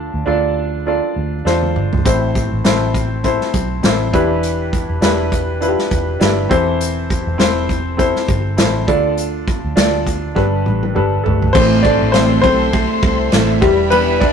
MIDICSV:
0, 0, Header, 1, 6, 480
1, 0, Start_track
1, 0, Key_signature, 0, "minor"
1, 0, Tempo, 593472
1, 1663, Time_signature, 4, 2, 24, 8
1, 11588, End_track
2, 0, Start_track
2, 0, Title_t, "String section"
2, 0, Program_c, 0, 48
2, 9336, Note_on_c, 0, 72, 68
2, 9339, Note_on_c, 0, 69, 77
2, 9339, Note_on_c, 0, 76, 69
2, 9341, Note_on_c, 0, 84, 82
2, 10998, Note_off_c, 0, 72, 0
2, 11000, Note_off_c, 0, 69, 0
2, 11000, Note_off_c, 0, 84, 0
2, 11020, Note_on_c, 0, 74, 70
2, 11023, Note_on_c, 0, 67, 75
2, 11024, Note_on_c, 0, 83, 78
2, 11588, Note_off_c, 0, 67, 0
2, 11588, Note_off_c, 0, 74, 0
2, 11588, Note_off_c, 0, 76, 0
2, 11588, Note_off_c, 0, 83, 0
2, 11588, End_track
3, 0, Start_track
3, 0, Title_t, "Grand piano"
3, 0, Program_c, 1, 0
3, 0, Control_c, 1, 64, 127
3, 0, Note_on_c, 1, 50, 66
3, 0, Note_on_c, 1, 62, 84
3, 0, Note_on_c, 1, 65, 72
3, 0, Note_on_c, 1, 69, 72
3, 0, Note_on_c, 1, 74, 85
3, 82, Note_off_c, 1, 62, 0
3, 84, Note_off_c, 1, 65, 0
3, 85, Note_off_c, 1, 69, 0
3, 88, Note_off_c, 1, 74, 0
3, 185, Note_off_c, 1, 50, 0
3, 208, Note_on_c, 1, 62, 79
3, 213, Note_on_c, 1, 65, 72
3, 219, Note_on_c, 1, 69, 70
3, 222, Note_on_c, 1, 74, 84
3, 602, Note_off_c, 1, 62, 0
3, 605, Note_off_c, 1, 65, 0
3, 608, Note_off_c, 1, 69, 0
3, 609, Note_off_c, 1, 74, 0
3, 699, Note_on_c, 1, 62, 70
3, 702, Note_on_c, 1, 65, 69
3, 707, Note_on_c, 1, 69, 56
3, 711, Note_on_c, 1, 74, 77
3, 1088, Note_off_c, 1, 62, 0
3, 1089, Note_off_c, 1, 65, 0
3, 1092, Note_off_c, 1, 69, 0
3, 1094, Note_off_c, 1, 74, 0
3, 1173, Note_on_c, 1, 62, 72
3, 1181, Note_on_c, 1, 65, 66
3, 1183, Note_on_c, 1, 69, 66
3, 1188, Note_on_c, 1, 72, 80
3, 1565, Note_off_c, 1, 62, 0
3, 1569, Note_off_c, 1, 65, 0
3, 1570, Note_off_c, 1, 69, 0
3, 1573, Note_off_c, 1, 72, 0
3, 1657, Note_on_c, 1, 60, 71
3, 1662, Note_on_c, 1, 64, 64
3, 1665, Note_on_c, 1, 45, 55
3, 1668, Note_on_c, 1, 69, 61
3, 1671, Note_on_c, 1, 72, 78
3, 1674, Control_c, 1, 64, 0
3, 1828, Control_c, 1, 64, 127
3, 2047, Note_off_c, 1, 60, 0
3, 2050, Note_off_c, 1, 64, 0
3, 2053, Note_off_c, 1, 69, 0
3, 2054, Note_off_c, 1, 72, 0
3, 2138, Note_on_c, 1, 60, 74
3, 2143, Note_on_c, 1, 64, 70
3, 2145, Note_on_c, 1, 69, 70
3, 2152, Note_on_c, 1, 72, 81
3, 2352, Note_off_c, 1, 45, 0
3, 2528, Note_off_c, 1, 60, 0
3, 2530, Note_off_c, 1, 64, 0
3, 2531, Note_off_c, 1, 69, 0
3, 2535, Note_off_c, 1, 72, 0
3, 2618, Note_on_c, 1, 60, 68
3, 2622, Note_on_c, 1, 64, 66
3, 2625, Note_on_c, 1, 69, 64
3, 2630, Note_on_c, 1, 72, 78
3, 3008, Note_off_c, 1, 60, 0
3, 3010, Note_off_c, 1, 64, 0
3, 3012, Note_off_c, 1, 69, 0
3, 3014, Note_off_c, 1, 72, 0
3, 3098, Note_on_c, 1, 60, 74
3, 3101, Note_on_c, 1, 64, 66
3, 3106, Note_on_c, 1, 69, 66
3, 3112, Note_on_c, 1, 72, 77
3, 3330, Note_off_c, 1, 64, 0
3, 3339, Note_on_c, 1, 62, 77
3, 3341, Note_off_c, 1, 60, 0
3, 3342, Note_on_c, 1, 64, 76
3, 3345, Note_off_c, 1, 69, 0
3, 3345, Note_on_c, 1, 52, 69
3, 3348, Note_off_c, 1, 72, 0
3, 3348, Note_on_c, 1, 67, 77
3, 3350, Note_on_c, 1, 71, 88
3, 3355, Control_c, 1, 64, 0
3, 3489, Control_c, 1, 64, 127
3, 3929, Note_off_c, 1, 62, 0
3, 3930, Note_off_c, 1, 64, 0
3, 3934, Note_off_c, 1, 67, 0
3, 3935, Note_off_c, 1, 71, 0
3, 4032, Note_off_c, 1, 52, 0
3, 4054, Note_on_c, 1, 62, 75
3, 4061, Note_on_c, 1, 64, 75
3, 4062, Note_on_c, 1, 67, 64
3, 4070, Note_on_c, 1, 71, 90
3, 4446, Note_off_c, 1, 62, 0
3, 4450, Note_off_c, 1, 64, 0
3, 4450, Note_off_c, 1, 67, 0
3, 4454, Note_off_c, 1, 71, 0
3, 4534, Note_on_c, 1, 62, 68
3, 4539, Note_on_c, 1, 64, 57
3, 4542, Note_on_c, 1, 65, 53
3, 4549, Note_on_c, 1, 71, 85
3, 4596, Note_on_c, 1, 67, 64
3, 4602, Note_off_c, 1, 65, 0
3, 4926, Note_off_c, 1, 62, 0
3, 4928, Note_off_c, 1, 64, 0
3, 4933, Note_off_c, 1, 71, 0
3, 4957, Note_off_c, 1, 67, 0
3, 5013, Note_on_c, 1, 62, 74
3, 5019, Note_on_c, 1, 64, 72
3, 5022, Note_on_c, 1, 67, 67
3, 5029, Note_on_c, 1, 71, 75
3, 5246, Note_off_c, 1, 64, 0
3, 5251, Note_on_c, 1, 60, 81
3, 5258, Note_off_c, 1, 62, 0
3, 5258, Note_on_c, 1, 64, 74
3, 5261, Note_on_c, 1, 52, 69
3, 5262, Note_on_c, 1, 69, 78
3, 5263, Note_off_c, 1, 67, 0
3, 5266, Note_off_c, 1, 71, 0
3, 5266, Note_on_c, 1, 72, 91
3, 5273, Control_c, 1, 64, 0
3, 5414, Control_c, 1, 64, 127
3, 5845, Note_off_c, 1, 60, 0
3, 5848, Note_off_c, 1, 64, 0
3, 5850, Note_off_c, 1, 69, 0
3, 5852, Note_off_c, 1, 72, 0
3, 5950, Note_off_c, 1, 52, 0
3, 5970, Note_on_c, 1, 60, 82
3, 5974, Note_on_c, 1, 64, 73
3, 5980, Note_on_c, 1, 69, 68
3, 5983, Note_on_c, 1, 72, 91
3, 6363, Note_off_c, 1, 60, 0
3, 6366, Note_off_c, 1, 64, 0
3, 6368, Note_off_c, 1, 69, 0
3, 6370, Note_off_c, 1, 72, 0
3, 6447, Note_on_c, 1, 60, 67
3, 6455, Note_on_c, 1, 64, 64
3, 6457, Note_on_c, 1, 69, 69
3, 6464, Note_on_c, 1, 72, 81
3, 6842, Note_off_c, 1, 60, 0
3, 6846, Note_off_c, 1, 64, 0
3, 6847, Note_off_c, 1, 69, 0
3, 6850, Note_off_c, 1, 72, 0
3, 6933, Note_on_c, 1, 60, 70
3, 6936, Note_on_c, 1, 64, 66
3, 6943, Note_on_c, 1, 69, 64
3, 6948, Note_on_c, 1, 72, 72
3, 7175, Note_off_c, 1, 69, 0
3, 7176, Note_on_c, 1, 62, 80
3, 7178, Note_off_c, 1, 60, 0
3, 7179, Note_off_c, 1, 64, 0
3, 7181, Note_on_c, 1, 65, 76
3, 7183, Note_on_c, 1, 50, 61
3, 7186, Note_off_c, 1, 72, 0
3, 7187, Note_on_c, 1, 69, 73
3, 7190, Note_on_c, 1, 74, 87
3, 7194, Control_c, 1, 64, 0
3, 7341, Control_c, 1, 64, 127
3, 7767, Note_off_c, 1, 62, 0
3, 7769, Note_off_c, 1, 65, 0
3, 7772, Note_off_c, 1, 69, 0
3, 7773, Note_off_c, 1, 74, 0
3, 7870, Note_off_c, 1, 50, 0
3, 7892, Note_on_c, 1, 62, 76
3, 7897, Note_on_c, 1, 65, 73
3, 7900, Note_on_c, 1, 69, 69
3, 7902, Note_on_c, 1, 74, 92
3, 8284, Note_off_c, 1, 62, 0
3, 8286, Note_off_c, 1, 65, 0
3, 8288, Note_off_c, 1, 69, 0
3, 8289, Note_off_c, 1, 74, 0
3, 8371, Note_on_c, 1, 62, 73
3, 8375, Note_on_c, 1, 67, 66
3, 8376, Note_on_c, 1, 43, 63
3, 8379, Note_on_c, 1, 69, 64
3, 8382, Note_on_c, 1, 71, 76
3, 8393, Control_c, 1, 64, 0
3, 8512, Control_c, 1, 64, 127
3, 8763, Note_off_c, 1, 62, 0
3, 8765, Note_off_c, 1, 67, 0
3, 8767, Note_off_c, 1, 69, 0
3, 8769, Note_off_c, 1, 71, 0
3, 8854, Note_on_c, 1, 62, 66
3, 8857, Note_on_c, 1, 67, 59
3, 8863, Note_on_c, 1, 69, 68
3, 8866, Note_on_c, 1, 71, 73
3, 9066, Note_off_c, 1, 43, 0
3, 9075, Note_off_c, 1, 69, 0
3, 9087, Note_on_c, 1, 69, 70
3, 9107, Note_on_c, 1, 57, 60
3, 9244, Note_off_c, 1, 62, 0
3, 9246, Note_off_c, 1, 67, 0
3, 9250, Note_off_c, 1, 71, 0
3, 9325, Note_on_c, 1, 72, 101
3, 9326, Note_off_c, 1, 57, 0
3, 9334, Note_on_c, 1, 52, 54
3, 9338, Note_on_c, 1, 57, 49
3, 9341, Note_off_c, 1, 69, 0
3, 9341, Note_on_c, 1, 60, 80
3, 9350, Control_c, 1, 64, 0
3, 9471, Control_c, 1, 64, 127
3, 9565, Note_off_c, 1, 60, 0
3, 9566, Note_on_c, 1, 74, 105
3, 9580, Note_off_c, 1, 72, 0
3, 9584, Note_on_c, 1, 62, 76
3, 9803, Note_on_c, 1, 72, 96
3, 9805, Note_off_c, 1, 62, 0
3, 9820, Note_off_c, 1, 74, 0
3, 9821, Note_on_c, 1, 60, 72
3, 10029, Note_off_c, 1, 72, 0
3, 10041, Note_on_c, 1, 72, 101
3, 10043, Note_off_c, 1, 60, 0
3, 10056, Note_on_c, 1, 60, 69
3, 10737, Note_off_c, 1, 72, 0
3, 10744, Note_off_c, 1, 60, 0
3, 10981, Note_off_c, 1, 52, 0
3, 10984, Note_off_c, 1, 57, 0
3, 11010, Note_on_c, 1, 67, 87
3, 11025, Note_on_c, 1, 55, 73
3, 11027, Control_c, 1, 64, 0
3, 11167, Control_c, 1, 64, 127
3, 11244, Note_off_c, 1, 55, 0
3, 11245, Note_on_c, 1, 71, 109
3, 11260, Note_off_c, 1, 67, 0
3, 11260, Note_on_c, 1, 59, 75
3, 11473, Note_off_c, 1, 71, 0
3, 11481, Note_off_c, 1, 59, 0
3, 11488, Note_on_c, 1, 74, 93
3, 11498, Note_on_c, 1, 62, 69
3, 11588, Note_off_c, 1, 62, 0
3, 11588, Note_off_c, 1, 74, 0
3, 11588, End_track
4, 0, Start_track
4, 0, Title_t, "Steel-string acoustic guitar"
4, 0, Program_c, 2, 25
4, 9334, Note_on_c, 2, 45, 81
4, 9337, Note_on_c, 2, 52, 76
4, 9341, Note_on_c, 2, 57, 86
4, 9342, Note_on_c, 2, 60, 84
4, 9343, Note_on_c, 2, 64, 105
4, 9347, Note_on_c, 2, 69, 100
4, 9569, Note_off_c, 2, 69, 0
4, 9575, Note_off_c, 2, 64, 0
4, 9577, Note_off_c, 2, 45, 0
4, 9578, Note_on_c, 2, 69, 54
4, 9579, Note_off_c, 2, 52, 0
4, 9580, Note_off_c, 2, 57, 0
4, 9581, Note_off_c, 2, 60, 0
4, 9585, Note_on_c, 2, 64, 49
4, 9590, Note_on_c, 2, 60, 46
4, 9594, Note_on_c, 2, 57, 46
4, 9813, Note_off_c, 2, 57, 0
4, 9815, Note_off_c, 2, 60, 0
4, 9815, Note_on_c, 2, 45, 78
4, 9818, Note_off_c, 2, 64, 0
4, 9819, Note_off_c, 2, 69, 0
4, 9820, Note_on_c, 2, 52, 78
4, 9823, Note_on_c, 2, 57, 89
4, 9825, Note_on_c, 2, 60, 84
4, 9827, Note_on_c, 2, 64, 82
4, 9830, Note_on_c, 2, 69, 101
4, 10045, Note_off_c, 2, 69, 0
4, 10053, Note_off_c, 2, 64, 0
4, 10055, Note_on_c, 2, 69, 58
4, 10057, Note_off_c, 2, 45, 0
4, 10058, Note_off_c, 2, 60, 0
4, 10059, Note_off_c, 2, 52, 0
4, 10061, Note_off_c, 2, 57, 0
4, 10063, Note_on_c, 2, 64, 59
4, 10068, Note_on_c, 2, 60, 54
4, 10073, Note_on_c, 2, 57, 45
4, 10284, Note_off_c, 2, 57, 0
4, 10290, Note_off_c, 2, 60, 0
4, 10294, Note_on_c, 2, 57, 66
4, 10297, Note_off_c, 2, 64, 0
4, 10297, Note_off_c, 2, 69, 0
4, 10300, Note_on_c, 2, 60, 66
4, 10307, Note_on_c, 2, 64, 70
4, 10312, Note_on_c, 2, 69, 81
4, 10521, Note_off_c, 2, 69, 0
4, 10529, Note_off_c, 2, 64, 0
4, 10531, Note_on_c, 2, 69, 57
4, 10535, Note_off_c, 2, 60, 0
4, 10536, Note_off_c, 2, 57, 0
4, 10539, Note_on_c, 2, 64, 58
4, 10545, Note_on_c, 2, 60, 51
4, 10550, Note_on_c, 2, 57, 48
4, 10769, Note_off_c, 2, 57, 0
4, 10771, Note_off_c, 2, 60, 0
4, 10772, Note_on_c, 2, 45, 70
4, 10773, Note_off_c, 2, 64, 0
4, 10774, Note_off_c, 2, 69, 0
4, 10775, Note_on_c, 2, 52, 77
4, 10779, Note_on_c, 2, 57, 90
4, 10781, Note_on_c, 2, 60, 90
4, 10782, Note_on_c, 2, 64, 79
4, 10786, Note_on_c, 2, 69, 84
4, 11008, Note_off_c, 2, 69, 0
4, 11010, Note_off_c, 2, 64, 0
4, 11011, Note_on_c, 2, 71, 61
4, 11015, Note_off_c, 2, 45, 0
4, 11016, Note_off_c, 2, 52, 0
4, 11018, Note_off_c, 2, 57, 0
4, 11019, Note_off_c, 2, 60, 0
4, 11020, Note_on_c, 2, 64, 53
4, 11028, Note_on_c, 2, 62, 49
4, 11250, Note_off_c, 2, 62, 0
4, 11251, Note_off_c, 2, 64, 0
4, 11252, Note_on_c, 2, 52, 80
4, 11254, Note_off_c, 2, 71, 0
4, 11256, Note_on_c, 2, 55, 99
4, 11259, Note_on_c, 2, 62, 84
4, 11261, Note_on_c, 2, 64, 93
4, 11265, Note_on_c, 2, 71, 101
4, 11481, Note_off_c, 2, 71, 0
4, 11490, Note_off_c, 2, 64, 0
4, 11491, Note_on_c, 2, 71, 56
4, 11494, Note_off_c, 2, 52, 0
4, 11496, Note_off_c, 2, 55, 0
4, 11497, Note_off_c, 2, 62, 0
4, 11500, Note_on_c, 2, 64, 47
4, 11508, Note_on_c, 2, 62, 43
4, 11588, Note_off_c, 2, 62, 0
4, 11588, Note_off_c, 2, 64, 0
4, 11588, Note_off_c, 2, 71, 0
4, 11588, End_track
5, 0, Start_track
5, 0, Title_t, "Fingered electric bass"
5, 0, Program_c, 3, 33
5, 0, Note_on_c, 3, 38, 71
5, 82, Note_off_c, 3, 38, 0
5, 112, Note_on_c, 3, 38, 70
5, 212, Note_off_c, 3, 38, 0
5, 217, Note_on_c, 3, 38, 93
5, 804, Note_off_c, 3, 38, 0
5, 941, Note_on_c, 3, 38, 62
5, 1165, Note_off_c, 3, 38, 0
5, 1177, Note_on_c, 3, 40, 72
5, 1403, Note_off_c, 3, 40, 0
5, 1424, Note_on_c, 3, 31, 60
5, 1647, Note_off_c, 3, 31, 0
5, 1662, Note_on_c, 3, 33, 86
5, 2011, Note_off_c, 3, 33, 0
5, 2039, Note_on_c, 3, 33, 85
5, 2136, Note_off_c, 3, 33, 0
5, 2145, Note_on_c, 3, 33, 89
5, 2728, Note_off_c, 3, 33, 0
5, 2863, Note_on_c, 3, 35, 72
5, 3086, Note_off_c, 3, 35, 0
5, 3106, Note_on_c, 3, 33, 78
5, 3328, Note_off_c, 3, 33, 0
5, 3344, Note_on_c, 3, 28, 76
5, 3926, Note_off_c, 3, 28, 0
5, 3959, Note_on_c, 3, 28, 74
5, 4057, Note_off_c, 3, 28, 0
5, 4063, Note_on_c, 3, 28, 79
5, 4647, Note_off_c, 3, 28, 0
5, 4783, Note_on_c, 3, 28, 67
5, 5007, Note_off_c, 3, 28, 0
5, 5023, Note_on_c, 3, 31, 84
5, 5247, Note_off_c, 3, 31, 0
5, 5264, Note_on_c, 3, 28, 67
5, 5846, Note_off_c, 3, 28, 0
5, 5880, Note_on_c, 3, 28, 88
5, 5977, Note_off_c, 3, 28, 0
5, 5983, Note_on_c, 3, 28, 88
5, 6567, Note_off_c, 3, 28, 0
5, 6702, Note_on_c, 3, 31, 75
5, 6925, Note_off_c, 3, 31, 0
5, 6943, Note_on_c, 3, 33, 90
5, 7166, Note_off_c, 3, 33, 0
5, 7183, Note_on_c, 3, 38, 69
5, 7764, Note_off_c, 3, 38, 0
5, 7799, Note_on_c, 3, 38, 74
5, 7896, Note_off_c, 3, 38, 0
5, 7904, Note_on_c, 3, 38, 86
5, 8350, Note_off_c, 3, 38, 0
5, 8381, Note_on_c, 3, 31, 90
5, 8604, Note_off_c, 3, 31, 0
5, 8628, Note_on_c, 3, 33, 70
5, 8848, Note_off_c, 3, 33, 0
5, 8867, Note_on_c, 3, 31, 80
5, 9087, Note_off_c, 3, 31, 0
5, 9106, Note_on_c, 3, 31, 77
5, 9326, Note_off_c, 3, 31, 0
5, 9341, Note_on_c, 3, 33, 99
5, 9689, Note_off_c, 3, 33, 0
5, 9719, Note_on_c, 3, 33, 86
5, 10038, Note_off_c, 3, 33, 0
5, 10059, Note_on_c, 3, 35, 72
5, 10407, Note_off_c, 3, 35, 0
5, 10537, Note_on_c, 3, 36, 77
5, 10761, Note_off_c, 3, 36, 0
5, 10782, Note_on_c, 3, 33, 92
5, 11003, Note_off_c, 3, 33, 0
5, 11017, Note_on_c, 3, 28, 83
5, 11588, Note_off_c, 3, 28, 0
5, 11588, End_track
6, 0, Start_track
6, 0, Title_t, "Drums"
6, 1183, Note_on_c, 9, 38, 43
6, 1264, Note_off_c, 9, 38, 0
6, 1316, Note_on_c, 9, 48, 53
6, 1397, Note_off_c, 9, 48, 0
6, 1424, Note_on_c, 9, 45, 67
6, 1505, Note_off_c, 9, 45, 0
6, 1559, Note_on_c, 9, 43, 77
6, 1639, Note_off_c, 9, 43, 0
6, 1663, Note_on_c, 9, 36, 91
6, 1663, Note_on_c, 9, 42, 87
6, 1744, Note_off_c, 9, 36, 0
6, 1744, Note_off_c, 9, 42, 0
6, 1904, Note_on_c, 9, 36, 72
6, 1905, Note_on_c, 9, 42, 54
6, 1985, Note_off_c, 9, 36, 0
6, 1986, Note_off_c, 9, 42, 0
6, 2140, Note_on_c, 9, 42, 71
6, 2143, Note_on_c, 9, 38, 95
6, 2221, Note_off_c, 9, 42, 0
6, 2223, Note_off_c, 9, 38, 0
6, 2382, Note_on_c, 9, 36, 68
6, 2384, Note_on_c, 9, 42, 61
6, 2463, Note_off_c, 9, 36, 0
6, 2465, Note_off_c, 9, 42, 0
6, 2620, Note_on_c, 9, 42, 69
6, 2623, Note_on_c, 9, 36, 61
6, 2701, Note_off_c, 9, 42, 0
6, 2704, Note_off_c, 9, 36, 0
6, 2758, Note_on_c, 9, 38, 34
6, 2839, Note_off_c, 9, 38, 0
6, 2860, Note_on_c, 9, 42, 61
6, 2863, Note_on_c, 9, 36, 71
6, 2941, Note_off_c, 9, 42, 0
6, 2943, Note_off_c, 9, 36, 0
6, 3101, Note_on_c, 9, 42, 71
6, 3106, Note_on_c, 9, 38, 83
6, 3182, Note_off_c, 9, 42, 0
6, 3187, Note_off_c, 9, 38, 0
6, 3345, Note_on_c, 9, 36, 80
6, 3347, Note_on_c, 9, 42, 55
6, 3426, Note_off_c, 9, 36, 0
6, 3428, Note_off_c, 9, 42, 0
6, 3584, Note_on_c, 9, 42, 86
6, 3665, Note_off_c, 9, 42, 0
6, 3826, Note_on_c, 9, 36, 74
6, 3828, Note_on_c, 9, 42, 54
6, 3907, Note_off_c, 9, 36, 0
6, 3909, Note_off_c, 9, 42, 0
6, 4060, Note_on_c, 9, 42, 72
6, 4063, Note_on_c, 9, 38, 80
6, 4141, Note_off_c, 9, 42, 0
6, 4143, Note_off_c, 9, 38, 0
6, 4303, Note_on_c, 9, 36, 69
6, 4306, Note_on_c, 9, 42, 66
6, 4384, Note_off_c, 9, 36, 0
6, 4387, Note_off_c, 9, 42, 0
6, 4543, Note_on_c, 9, 42, 63
6, 4623, Note_off_c, 9, 42, 0
6, 4680, Note_on_c, 9, 38, 31
6, 4761, Note_off_c, 9, 38, 0
6, 4781, Note_on_c, 9, 42, 62
6, 4783, Note_on_c, 9, 36, 78
6, 4862, Note_off_c, 9, 42, 0
6, 4864, Note_off_c, 9, 36, 0
6, 5020, Note_on_c, 9, 42, 69
6, 5025, Note_on_c, 9, 38, 85
6, 5101, Note_off_c, 9, 42, 0
6, 5106, Note_off_c, 9, 38, 0
6, 5264, Note_on_c, 9, 36, 89
6, 5268, Note_on_c, 9, 42, 52
6, 5345, Note_off_c, 9, 36, 0
6, 5349, Note_off_c, 9, 42, 0
6, 5505, Note_on_c, 9, 42, 91
6, 5586, Note_off_c, 9, 42, 0
6, 5745, Note_on_c, 9, 36, 74
6, 5748, Note_on_c, 9, 42, 56
6, 5826, Note_off_c, 9, 36, 0
6, 5829, Note_off_c, 9, 42, 0
6, 5981, Note_on_c, 9, 42, 70
6, 5983, Note_on_c, 9, 38, 89
6, 6062, Note_off_c, 9, 42, 0
6, 6064, Note_off_c, 9, 38, 0
6, 6222, Note_on_c, 9, 36, 64
6, 6226, Note_on_c, 9, 42, 55
6, 6303, Note_off_c, 9, 36, 0
6, 6307, Note_off_c, 9, 42, 0
6, 6463, Note_on_c, 9, 36, 74
6, 6464, Note_on_c, 9, 42, 69
6, 6544, Note_off_c, 9, 36, 0
6, 6544, Note_off_c, 9, 42, 0
6, 6598, Note_on_c, 9, 38, 36
6, 6679, Note_off_c, 9, 38, 0
6, 6699, Note_on_c, 9, 42, 60
6, 6701, Note_on_c, 9, 36, 79
6, 6779, Note_off_c, 9, 42, 0
6, 6782, Note_off_c, 9, 36, 0
6, 6938, Note_on_c, 9, 42, 72
6, 6944, Note_on_c, 9, 38, 95
6, 7019, Note_off_c, 9, 42, 0
6, 7024, Note_off_c, 9, 38, 0
6, 7182, Note_on_c, 9, 36, 81
6, 7183, Note_on_c, 9, 42, 55
6, 7263, Note_off_c, 9, 36, 0
6, 7264, Note_off_c, 9, 42, 0
6, 7421, Note_on_c, 9, 42, 84
6, 7502, Note_off_c, 9, 42, 0
6, 7664, Note_on_c, 9, 36, 78
6, 7666, Note_on_c, 9, 42, 50
6, 7745, Note_off_c, 9, 36, 0
6, 7747, Note_off_c, 9, 42, 0
6, 7900, Note_on_c, 9, 42, 77
6, 7903, Note_on_c, 9, 38, 97
6, 7981, Note_off_c, 9, 42, 0
6, 7984, Note_off_c, 9, 38, 0
6, 8141, Note_on_c, 9, 36, 58
6, 8144, Note_on_c, 9, 42, 62
6, 8222, Note_off_c, 9, 36, 0
6, 8225, Note_off_c, 9, 42, 0
6, 8382, Note_on_c, 9, 36, 66
6, 8382, Note_on_c, 9, 48, 45
6, 8463, Note_off_c, 9, 36, 0
6, 8463, Note_off_c, 9, 48, 0
6, 8622, Note_on_c, 9, 47, 57
6, 8703, Note_off_c, 9, 47, 0
6, 8759, Note_on_c, 9, 47, 56
6, 8840, Note_off_c, 9, 47, 0
6, 8864, Note_on_c, 9, 45, 60
6, 8945, Note_off_c, 9, 45, 0
6, 9106, Note_on_c, 9, 43, 81
6, 9187, Note_off_c, 9, 43, 0
6, 9240, Note_on_c, 9, 43, 72
6, 9321, Note_off_c, 9, 43, 0
6, 9342, Note_on_c, 9, 36, 111
6, 9344, Note_on_c, 9, 49, 99
6, 9423, Note_off_c, 9, 36, 0
6, 9425, Note_off_c, 9, 49, 0
6, 9583, Note_on_c, 9, 36, 81
6, 9585, Note_on_c, 9, 51, 48
6, 9663, Note_off_c, 9, 36, 0
6, 9666, Note_off_c, 9, 51, 0
6, 9816, Note_on_c, 9, 51, 70
6, 9819, Note_on_c, 9, 38, 103
6, 9897, Note_off_c, 9, 51, 0
6, 9900, Note_off_c, 9, 38, 0
6, 10059, Note_on_c, 9, 36, 76
6, 10062, Note_on_c, 9, 51, 58
6, 10140, Note_off_c, 9, 36, 0
6, 10143, Note_off_c, 9, 51, 0
6, 10297, Note_on_c, 9, 51, 63
6, 10299, Note_on_c, 9, 36, 79
6, 10378, Note_off_c, 9, 51, 0
6, 10380, Note_off_c, 9, 36, 0
6, 10535, Note_on_c, 9, 51, 60
6, 10537, Note_on_c, 9, 36, 90
6, 10616, Note_off_c, 9, 51, 0
6, 10618, Note_off_c, 9, 36, 0
6, 10772, Note_on_c, 9, 51, 63
6, 10778, Note_on_c, 9, 38, 98
6, 10853, Note_off_c, 9, 51, 0
6, 10859, Note_off_c, 9, 38, 0
6, 11017, Note_on_c, 9, 36, 92
6, 11018, Note_on_c, 9, 51, 55
6, 11098, Note_off_c, 9, 36, 0
6, 11098, Note_off_c, 9, 51, 0
6, 11255, Note_on_c, 9, 51, 84
6, 11336, Note_off_c, 9, 51, 0
6, 11497, Note_on_c, 9, 36, 80
6, 11497, Note_on_c, 9, 51, 49
6, 11578, Note_off_c, 9, 36, 0
6, 11578, Note_off_c, 9, 51, 0
6, 11588, End_track
0, 0, End_of_file